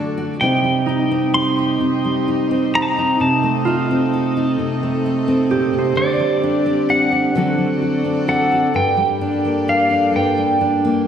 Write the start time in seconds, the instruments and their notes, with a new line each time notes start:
Already playing: steel-string acoustic guitar D3 F#3 D4 F#4 A4, string section A3 D4 F#4 D5
0.18 steel-string acoustic guitar F#4
0.40 steel-string acoustic guitar C3 G3 C4 D#4 G4, string section C4 D#4 G4 D#5, pedal steel guitar G5
0.64 steel-string acoustic guitar G3
0.86 harp D#4, steel-string acoustic guitar D#4
1.11 steel-string acoustic guitar C4
1.34 steel-string acoustic guitar G4, pedal steel guitar C6
1.58 steel-string acoustic guitar D#4
1.81 steel-string acoustic guitar C3
2.04 steel-string acoustic guitar G3
2.28 steel-string acoustic guitar D#4
2.51 steel-string acoustic guitar C4
2.74 steel-string acoustic guitar G4, pedal steel guitar A#5
2.82 pedal steel guitar A5
2.88 pedal steel guitar A#5
2.98 steel-string acoustic guitar D#4
3.20 steel-string acoustic guitar C3, string section A4, pedal steel guitar A5
3.43 steel-string acoustic guitar A3
3.65 steel-string acoustic guitar D#4, harp F4
3.91 steel-string acoustic guitar C4
4.13 steel-string acoustic guitar A4
4.37 steel-string acoustic guitar D#4
4.59 steel-string acoustic guitar C3
4.83 steel-string acoustic guitar A3
5.06 steel-string acoustic guitar D#4
5.28 steel-string acoustic guitar C4
5.51 steel-string acoustic guitar A#2, harp G4
5.73 steel-string acoustic guitar C3
5.78 harp C5
5.95 steel-string acoustic guitar D3, string section G4 D5, pedal steel guitar D5
6.06 harp D5
6.20 steel-string acoustic guitar G3
6.43 steel-string acoustic guitar D4
6.66 steel-string acoustic guitar C4
6.89 steel-string acoustic guitar G4, pedal steel guitar F#5
7.12 steel-string acoustic guitar D4
7.35 steel-string acoustic guitar D3 F#3 C4 F#4 A4, string section F#4 A4 D5
7.58 steel-string acoustic guitar F#3
7.82 steel-string acoustic guitar F#4
8.05 steel-string acoustic guitar C4
8.28 steel-string acoustic guitar A4, harp A4, pedal steel guitar F#5
8.52 steel-string acoustic guitar F#4
8.74 steel-string acoustic guitar G2, string section A#3 G4 A4 D5, pedal steel guitar G5
8.97 steel-string acoustic guitar G3
9.21 steel-string acoustic guitar D4
9.45 steel-string acoustic guitar A#3
9.68 steel-string acoustic guitar A4, pedal steel guitar F5
9.90 steel-string acoustic guitar D4
10.14 steel-string acoustic guitar G2, pedal steel guitar G5
10.37 steel-string acoustic guitar G3
10.61 steel-string acoustic guitar D4
10.85 steel-string acoustic guitar A#3